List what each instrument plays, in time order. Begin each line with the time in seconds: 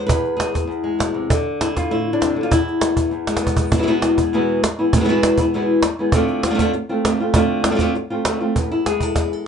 0.07 nylon-string guitar E2 B4, cajon bass
0.25 cajon slap
0.37 nylon-string guitar G#4, cajon slap
0.54 nylon-string guitar E4, cajon bass, cajon slap
0.67 nylon-string guitar E2, cajon slap
0.84 nylon-string guitar G#3
0.99 nylon-string guitar B2, cajon slap
1.14 nylon-string guitar C3
1.30 nylon-string guitar D3, cajon bass
1.61 nylon-string guitar E4, cajon slap
1.76 nylon-string guitar F4, cajon bass, cajon slap
1.91 nylon-string guitar A2 E4, cajon slap
2.13 nylon-string guitar D4
2.21 nylon-string guitar C3 E4, cajon slap
2.36 nylon-string guitar D3
2.43 nylon-string guitar F4
2.51 nylon-string guitar E2 E4, cajon bass
2.68 cajon slap
2.81 nylon-string guitar B3, cajon slap
2.97 nylon-string guitar B3, cajon bass
3.11 nylon-string guitar E2, cajon slap
3.27 nylon-string guitar G#3, cajon slap
3.37 cajon slap
3.43 nylon-string guitar B3, cajon bass
3.57 nylon-string guitar B3, cajon bass
3.72 nylon-string guitar B2 E3 G#3 B3 E4, muted nylon-string guitar stroke, cajon bass
3.78 nylon-string guitar B2 E3 G#3 B3 E4
3.83 nylon-string guitar B2 E3 G#3 B3 E4
3.87 nylon-string guitar E2 B2 E3 G#3 B3 E4, cajon slap
4.02 cajon slap
4.17 nylon-string guitar E3 G#3 B3 E4, cajon bass
4.33 nylon-string guitar E2 B2 E3 G#3 B3 E4, cajon slap
4.63 muted nylon-string guitar stroke, cajon slap
4.79 nylon-string guitar E3 G#3 B3 E4
4.93 nylon-string guitar B2 E3 G#3 B3 E4, muted nylon-string guitar stroke, cajon bass
5.00 nylon-string guitar B2 E3 G#3 B3 E4
5.04 nylon-string guitar B2 E3 G#3 B3 E4
5.09 nylon-string guitar E2 B2 E3 G#3 B3 E4, cajon slap
5.23 cajon slap
5.38 nylon-string guitar E3 G#3 B3 E4, cajon bass
5.53 nylon-string guitar E2 B2 E3 G#3 B3 E4, cajon slap
5.83 muted nylon-string guitar stroke, cajon slap
5.99 nylon-string guitar E3 G#3 B3 E4
6.12 nylon-string guitar D3 A3 C4 F4, cajon bass
6.28 cajon slap
6.43 nylon-string guitar D3 A3 C4 F4, cajon slap
6.50 nylon-string guitar D3 A3 C4 F4
6.55 nylon-string guitar D3 A3 C4 F4
6.59 nylon-string guitar D3 A3 C4 F4, cajon bass, cajon slap
6.73 muted nylon-string guitar stroke, cajon slap
6.89 nylon-string guitar A3 C4 F4
7.05 nylon-string guitar D3 A3 C4 F4, cajon slap
7.20 nylon-string guitar A3 C4 F4
7.34 nylon-string guitar D3 A3 C4 F4, cajon bass
7.64 nylon-string guitar D3 A3 C4 F4, cajon slap
7.71 nylon-string guitar D3 A3 C4 F4
7.75 nylon-string guitar D3 A3 C4 F4, cajon bass, cajon slap
7.80 nylon-string guitar D3 A3 C4 F4
7.95 muted nylon-string guitar stroke, cajon slap
8.10 nylon-string guitar A3 C4 F4
8.25 nylon-string guitar D3 A3 C4 F4, cajon slap
8.40 nylon-string guitar A3 C4 F4
8.56 nylon-string guitar E2 B4, cajon bass
8.71 nylon-string guitar E4, cajon slap
8.86 nylon-string guitar G#3 G#4, cajon slap
9.00 nylon-string guitar A4, cajon bass
9.16 nylon-string guitar B4, cajon bass, cajon slap
9.32 nylon-string guitar A4, cajon slap